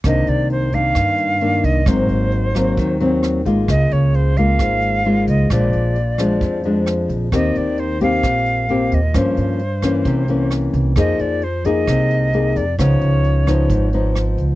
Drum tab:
HH |xxxxxxxx|xxxxxxxx|xxxxxxxx|xxxxxxxx|
SD |r---r---|r--r--r-|r---r---|r--r--r-|
BD |o--oo--o|o--oo--o|o--oo--o|o--oo--o|

HH |xxxxxxxx|xxxxxxxx|xxxxxxxx|xxxxxxxx|
SD |r---r---|r--r--r-|r---r---|r--r--r-|
BD |o--oo--o|o--oo--o|o--oo--o|o--oo--o|